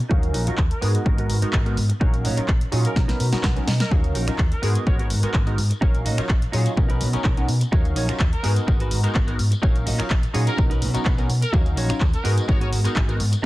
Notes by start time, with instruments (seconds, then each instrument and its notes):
0.00 muted clean electric guitar stroke, tambourine
0.09 fingered electric bass D#2, analog polysynth F#3 C#4 D#4 A#4 F5, clean electric guitar D#4 F#4 C#5, kick
0.23 closed hi-hat, tambourine
0.34 fingered electric bass A#1, clean electric guitar D#4 F#4 A#4, open hi-hat
0.47 analog polysynth F#3 C#4 D#4 F4 A#4, muted fingered electric bass stroke, closed hi-hat, tambourine
0.58 fingered electric bass D#2, muted clean electric guitar stroke, kick, clap
0.71 trumpet section A#4, closed hi-hat, tambourine
0.81 fingered electric bass G#2, analog polysynth G#3 B3 D#4 F#4 G#4, clean electric guitar B3 F#4 A#4, open hi-hat
0.94 closed hi-hat, tambourine
1.05 fingered electric bass G#1, analog polysynth G#3 B3 D#4 F#4 A#4, kick
1.18 clean electric guitar B3 F#4 A#4, closed hi-hat, tambourine
1.30 fingered electric bass G#2, open hi-hat
1.41 analog polysynth G#3 B3 D#4 F#4 A#4, muted fingered electric bass stroke, closed hi-hat, tambourine
1.53 fingered electric bass G#1, clean electric guitar B3 F#4 A#4, kick, clap
1.65 analog polysynth G#3 B3 D#4 F#4 A#4, closed hi-hat, tambourine
1.77 fingered electric bass G#2, muted clean electric guitar stroke, open hi-hat
1.89 muted clean electric guitar stroke, closed hi-hat, tambourine
2.00 fingered electric bass A#1, analog polysynth F#3 C#4 D#4 A#4 F5, clean electric guitar D#4 F#4 C#5, kick
2.12 closed hi-hat, tambourine
2.25 fingered electric bass A#2, clean electric guitar D#4 F#4 C#5, open hi-hat
2.37 analog polysynth F#3 C#4 D#4 F4 A#4, muted fingered electric bass stroke, closed hi-hat, tambourine
2.48 fingered electric bass A#1, muted clean electric guitar stroke, kick, clap
2.61 closed hi-hat
2.72 fingered electric bass A#2, analog polysynth F#3 C#4 D#4 F4 G#4, clean electric guitar D#4 F#4 C#5, open hi-hat
2.85 trumpet section A#4, closed hi-hat, tambourine
2.96 fingered electric bass B1, analog polysynth F#3 B3 C#4 D#4 A#4, kick, snare
3.08 clean electric guitar D#4 A#4 B4, snare, closed hi-hat, tambourine
3.20 fingered electric bass B2, clean electric guitar A#5, open hi-hat
3.32 analog polysynth F#3 B3 C#4 D#4 A#4, muted fingered electric bass stroke, snare, closed hi-hat, tambourine
3.43 fingered electric bass B1, clean electric guitar D#4 A#4 B4 F#5, kick, snare, clap
3.56 analog polysynth F#3 B3 C#4 D#4 A#4, closed hi-hat, tambourine
3.67 fingered electric bass B2, clean electric guitar D#5, muted clean electric guitar stroke, snare, open hi-hat
3.79 trumpet section A#4, muted clean electric guitar stroke, snare, closed hi-hat, tambourine
3.91 fingered electric bass D#2, analog polysynth F#3 C#4 D#4 A#4 F5, clean electric guitar D#4 F#4 C#5, kick
4.04 closed hi-hat, tambourine
4.15 fingered electric bass A#1, clean electric guitar D#4 F#4 A#4, open hi-hat
4.27 analog polysynth F#3 C#4 D#4 F4 A#4, finger snap, muted fingered electric bass stroke, closed hi-hat, tambourine
4.38 fingered electric bass D#2, muted clean electric guitar stroke, kick, clap
4.52 trumpet section A#4, closed hi-hat, tambourine
4.62 fingered electric bass G#2, analog polysynth G#3 B3 D#4 F#4 G#4, clean electric guitar B3 F#4 A#4, open hi-hat
4.75 closed hi-hat, tambourine
4.86 fingered electric bass G#1, analog polysynth G#3 B3 D#4 F#4 A#4, trumpet section C#5, kick
4.99 clean electric guitar B3 F#4 A#4, trumpet section C#5, closed hi-hat, tambourine
5.10 fingered electric bass G#2, open hi-hat
5.23 analog polysynth G#3 B3 D#4 F#4 A#4, muted fingered electric bass stroke, closed hi-hat, tambourine
5.33 fingered electric bass G#1, clean electric guitar B3 F#4 A#4, kick, clap
5.46 analog polysynth G#3 B3 D#4 F#4 A#4, closed hi-hat, tambourine
5.58 fingered electric bass G#2, muted clean electric guitar stroke, open hi-hat
5.70 muted clean electric guitar stroke, closed hi-hat, tambourine
5.81 fingered electric bass A#1, analog polysynth F#3 C#4 D#4 A#4 F5, clean electric guitar D#4 F#4 C#5, kick
5.95 closed hi-hat, tambourine
6.05 fingered electric bass A#2, clean electric guitar D#4 F#4 D#5, open hi-hat
6.18 analog polysynth F#3 C#4 D#4 F4 A#4, finger snap, muted fingered electric bass stroke, closed hi-hat, tambourine
6.28 fingered electric bass A#1, muted clean electric guitar stroke, kick, clap
6.42 closed hi-hat, tambourine
6.52 fingered electric bass A#2, analog polysynth F#3 C#4 D#4 F4 G#4, clean electric guitar D#4 F#4 C#5, open hi-hat
6.66 closed hi-hat, tambourine
6.76 fingered electric bass B1, analog polysynth F#3 B3 C#4 D#4 A#4, kick
6.89 clean electric guitar D#4 A#4 B4, closed hi-hat, tambourine
7.01 fingered electric bass B2, open hi-hat
7.13 analog polysynth F#3 B3 C#4 D#4 A#4, muted fingered electric bass stroke, closed hi-hat, tambourine
7.24 fingered electric bass B1, clean electric guitar D#4 A#4 C#5, kick, clap
7.37 analog polysynth F#3 B3 C#4 D#4 A#4, closed hi-hat, tambourine
7.48 fingered electric bass B2, muted clean electric guitar stroke, open hi-hat
7.61 muted clean electric guitar stroke, closed hi-hat, tambourine
7.72 fingered electric bass D#2, analog polysynth F#3 C#4 D#4 A#4 F5, clean electric guitar D#4 F#4 C#5, kick, tambourine
7.85 closed hi-hat, tambourine
7.96 fingered electric bass A#1, clean electric guitar D#4 F#4 C#5, open hi-hat
8.08 analog polysynth F#3 C#4 D#4 F4 A#4, finger snap, muted fingered electric bass stroke, closed hi-hat, tambourine
8.20 fingered electric bass D#2, kick, clap
8.32 trumpet section A#4, closed hi-hat, tambourine
8.43 fingered electric bass G#2, analog polysynth G#3 B3 D#4 F#4 G#4, clean electric guitar B3 F#4 A#4, open hi-hat
8.56 closed hi-hat, tambourine
8.67 fingered electric bass G#1, analog polysynth G#3 B3 D#4 F#4 A#4, kick, tambourine
8.80 clean electric guitar B3 F#4 B4, closed hi-hat, tambourine
8.91 fingered electric bass G#2, open hi-hat
9.03 analog polysynth G#3 B3 D#4 F#4 A#4, muted fingered electric bass stroke, closed hi-hat, tambourine
9.14 fingered electric bass G#1, clean electric guitar B3 F#4 A#4, kick, clap, tambourine
9.27 analog polysynth G#3 B3 D#4 F#4 A#4, closed hi-hat, tambourine
9.39 fingered electric bass G#2, muted clean electric guitar stroke, open hi-hat
9.51 muted clean electric guitar stroke, closed hi-hat, tambourine
9.62 fingered electric bass A#1, analog polysynth F#3 C#4 D#4 A#4 F5, clean electric guitar D#4 F#4 C#5, kick
9.76 closed hi-hat, tambourine
9.86 fingered electric bass A#2, clean electric guitar D#4 F#4 D#5, open hi-hat
9.98 analog polysynth F#3 C#4 D#4 F4 A#4, finger snap, muted fingered electric bass stroke, closed hi-hat, tambourine
10.10 fingered electric bass A#1, kick, clap, tambourine
10.23 closed hi-hat, tambourine
10.33 fingered electric bass A#2, analog polysynth F#3 C#4 D#4 F4 G#4, clean electric guitar D#4 F#4 C#5, open hi-hat
10.47 trumpet section A#4, closed hi-hat, tambourine
10.57 fingered electric bass B1, analog polysynth F#3 B3 C#4 D#4 A#4, kick, tambourine
10.70 clean electric guitar D#4 A#4 B4, closed hi-hat, tambourine
10.82 fingered electric bass B2, open hi-hat
10.94 analog polysynth F#3 B3 C#4 D#4 A#4, muted fingered electric bass stroke, closed hi-hat, tambourine
11.05 fingered electric bass B1, clean electric guitar D#4 A#4 B4, kick, clap
11.18 analog polysynth F#3 B3 C#4 D#4 A#4, closed hi-hat, tambourine
11.29 fingered electric bass B2, muted clean electric guitar stroke, open hi-hat
11.42 trumpet section A#4, muted clean electric guitar stroke, closed hi-hat, tambourine
11.53 fingered electric bass D#2, analog polysynth F#3 C#4 D#4 A#4 F5, clean electric guitar D#4 F#4 C#5, kick, tambourine
11.66 closed hi-hat, tambourine
11.76 fingered electric bass A#1, clean electric guitar D#4 F#4 C#5, open hi-hat
11.89 analog polysynth F#3 C#4 D#4 F4 A#4, finger snap, muted fingered electric bass stroke, closed hi-hat, tambourine
12.00 fingered electric bass D#2, kick, clap, tambourine
12.13 trumpet section A#4, closed hi-hat, tambourine
12.24 fingered electric bass G#2, analog polysynth G#3 B3 D#4 F#4 G#4, clean electric guitar B3 F#4 A#4, open hi-hat
12.38 closed hi-hat, tambourine
12.48 fingered electric bass G#1, analog polysynth G#3 B3 D#4 F#4 A#4, trumpet section C#5, kick, tambourine
12.60 clean electric guitar B3 F#4 G#4, trumpet section C#5, closed hi-hat, tambourine
12.73 fingered electric bass G#2, open hi-hat
12.84 analog polysynth G#3 B3 D#4 F#4 A#4, muted fingered electric bass stroke, closed hi-hat, tambourine
12.95 fingered electric bass G#1, clean electric guitar B3 F#4 G#4, kick, clap
13.08 analog polysynth G#3 B3 D#4 F#4 A#4, closed hi-hat, tambourine
13.19 fingered electric bass G#2, muted clean electric guitar stroke, open hi-hat
13.32 muted clean electric guitar stroke, closed hi-hat, tambourine